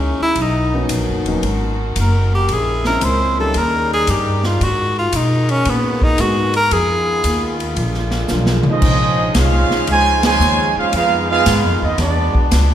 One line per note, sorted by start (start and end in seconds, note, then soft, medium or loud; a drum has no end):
0.00 0.17 C#2 medium
0.00 0.36 G#3 medium
0.00 0.34 A#3 medium
0.00 0.22 C#4 medium
0.00 2.45 D#4 medium
0.00 0.36 E4 medium
0.19 0.43 E4 loud
0.19 muted upright bass stroke soft
0.35 0.88 B1 medium
0.35 2.47 B2 medium
0.35 2.47 F#4 medium
0.35 4.57 A#4 medium
0.35 kick soft
0.35 ride medium
0.41 0.92 D#4 medium
0.73 1.23 F#3 medium
0.73 1.23 A#3 medium
0.73 1.23 B3 medium
0.73 1.23 C#4 medium
0.73 1.23 D#4 medium
0.89 1.08 A#1 medium
0.89 kick soft
0.89 hi-hat pedal medium
0.89 ride medium
1.07 1.24 F#1 medium
1.24 1.41 D#1 medium
1.24 1.42 F#3 medium
1.24 1.42 A#3 medium
1.24 1.42 B3 medium
1.24 1.42 C#4 medium
1.24 1.42 D#4 medium
1.24 ride soft
1.42 1.94 G#1 medium
1.42 kick soft
1.42 ride medium
1.96 2.47 F#1 medium
1.96 kick soft
1.96 hi-hat pedal soft
1.96 ride medium
2.00 2.32 A#4 medium
2.35 2.54 G4 medium
2.48 3.00 A#1 medium
2.48 4.59 C#3 medium
2.48 3.55 G#3 medium
2.48 3.55 E4 medium
2.48 kick soft
2.48 ride medium
2.53 2.86 G#4 medium
2.85 3.35 G#3 medium
2.85 3.35 A#3 medium
2.85 3.35 C4 medium
2.85 3.35 C#4 medium
2.85 3.36 E4 medium
2.85 3.06 A#4 loud
2.85 snare medium
3.01 3.53 C#2 medium
3.01 3.39 C5 loud
3.01 kick soft
3.01 hi-hat pedal medium
3.01 ride medium
3.40 3.54 G3 medium
3.40 3.54 A#3 medium
3.40 3.54 C#4 medium
3.40 3.55 D#4 medium
3.40 3.55 G4 medium
3.40 3.60 A4 loud
3.54 4.06 D#2 medium
3.54 4.61 G3 medium
3.54 4.61 D#4 loud
3.54 kick soft
3.54 ride medium
3.59 3.93 A#4 loud
3.93 4.12 G#4 loud
4.07 4.59 G2 loud
4.07 4.47 G4 medium
4.07 kick soft
4.07 hi-hat pedal medium
4.07 ride medium
4.44 4.66 F4 loud
4.44 snare medium
4.61 5.12 G#2 medium
4.61 6.55 D#3 medium
4.61 7.76 G#3 medium
4.61 6.55 A#3 medium
4.61 6.55 F#4 medium
4.61 4.98 F#4 loud
4.61 kick soft
4.61 ride medium
4.99 5.18 F4 loud
5.12 5.64 B2 loud
5.12 5.52 D#4 medium
5.12 kick soft
5.12 hi-hat pedal medium
5.12 ride medium
5.49 5.71 C#4 loud
5.49 ride soft
5.65 6.17 A#2 medium
5.65 kick soft
5.65 ride medium
5.69 6.05 B3 medium
6.02 6.22 D#4 loud
6.02 kick medium
6.18 6.70 G#2 loud
6.18 6.51 G#3 medium
6.18 6.51 A#3 medium
6.18 6.52 B3 medium
6.18 6.52 D#4 medium
6.18 6.52 F#4 medium
6.18 6.56 F#4 medium
6.18 kick soft
6.18 hi-hat pedal medium
6.18 ride medium
6.54 6.75 A#4 loud
6.54 ride medium
6.71 7.23 F2 medium
6.71 7.76 D#3 medium
6.71 7.77 B3 medium
6.71 8.81 F4 loud
6.71 7.61 G#4 loud
6.71 kick soft
6.71 ride medium
7.24 7.75 D#2 loud
7.24 kick soft
7.24 hi-hat pedal medium
7.24 ride medium
7.60 ride medium
7.76 8.28 A#1 medium
7.76 8.81 D3 medium
7.76 8.82 G#3 medium
7.76 8.82 A#3 medium
7.76 kick soft
7.76 ride medium
7.94 snare soft
8.11 snare medium
8.28 8.63 B1 loud
8.28 8.63 F3 medium
8.28 8.63 G#3 medium
8.28 8.63 A#3 medium
8.28 8.63 D4 medium
8.28 8.63 F4 medium
8.28 snare medium
8.28 hi-hat pedal medium
8.46 snare medium
8.63 muted upright bass stroke soft
8.63 mid tom medium
8.67 9.32 F3 medium
8.67 9.32 G#3 medium
8.67 9.33 D#4 medium
8.67 9.34 G#4 loud
8.67 9.34 C5 medium
8.67 9.34 D#5 loud
8.72 9.34 C#4 medium
8.82 9.33 A#1 medium
8.82 10.92 C#3 medium
8.82 12.74 G#3 medium
8.82 10.92 C#4 medium
8.82 10.92 D#4 medium
8.82 kick medium
8.82 crash medium
9.35 9.68 C2 loud
9.35 9.88 G#3 loud
9.35 9.89 C#4 medium
9.35 9.89 F4 medium
9.35 kick soft
9.35 snare medium
9.35 hi-hat pedal medium
9.35 ride medium
9.39 9.90 C#4 medium
9.39 9.90 G#4 medium
9.39 9.90 C5 medium
9.39 9.90 F5 loud
9.70 muted upright bass stroke soft
9.70 snare medium
9.87 10.38 C#2 medium
9.87 10.22 C#3 loud
9.87 10.22 F3 medium
9.87 10.22 G#3 medium
9.87 10.23 F4 loud
9.87 10.23 C#5 loud
9.87 kick soft
9.87 ride medium
9.91 10.23 C5 medium
9.91 10.23 G#5 loud
10.23 10.73 C#3 medium
10.23 10.73 F3 loud
10.23 10.73 G#3 loud
10.23 10.74 F4 loud
10.23 10.75 C5 loud
10.23 10.75 C#5 loud
10.23 10.74 G#5 loud
10.23 snare loud
10.23 ride medium
10.39 10.73 D#2 loud
10.39 hi-hat pedal medium
10.76 10.94 G#3 medium
10.76 10.95 C#4 medium
10.76 10.94 F4 medium
10.76 10.95 G#4 medium
10.76 10.94 C5 medium
10.76 10.95 F5 loud
10.76 muted upright bass stroke soft
10.93 11.44 F2 medium
10.93 11.98 D#3 medium
10.93 11.28 G#3 medium
10.93 11.98 B3 medium
10.93 11.28 B3 medium
10.93 11.28 D#4 medium
10.93 11.98 F4 loud
10.93 11.28 F4 medium
10.93 11.28 G#4 medium
10.93 11.28 B4 medium
10.93 11.28 F5 loud
10.93 kick soft
10.93 ride medium
11.31 11.79 G#3 loud
11.31 11.80 B3 loud
11.31 11.80 D#4 medium
11.31 11.80 F4 loud
11.31 11.79 G#4 loud
11.31 11.79 B4 medium
11.31 11.79 F5 loud
11.46 11.64 G#2 loud
11.46 kick soft
11.46 snare medium
11.46 hi-hat pedal medium
11.46 ride loud
11.64 11.81 F2 medium
11.82 11.97 D#2 medium
11.82 11.99 G#3 medium
11.82 12.00 B3 medium
11.82 11.99 B3 medium
11.82 12.00 D#4 medium
11.82 12.00 F4 medium
11.82 11.99 G#4 medium
11.82 12.00 D#5 medium
11.98 12.32 E2 loud
11.98 12.48 G#3 medium
11.98 12.74 B3 medium
11.98 12.48 B3 medium
11.98 12.49 B3 medium
11.98 12.74 D4 medium
11.98 12.48 D4 medium
11.98 12.74 F#4 medium
11.98 12.49 F#4 medium
11.98 12.49 G#4 medium
11.98 12.49 D5 medium
11.98 kick soft
11.98 snare soft
11.98 ride medium
12.34 muted upright bass stroke soft
12.34 kick medium
12.51 12.74 C#2 loud
12.51 kick soft
12.51 snare medium
12.51 hi-hat pedal medium
12.51 ride medium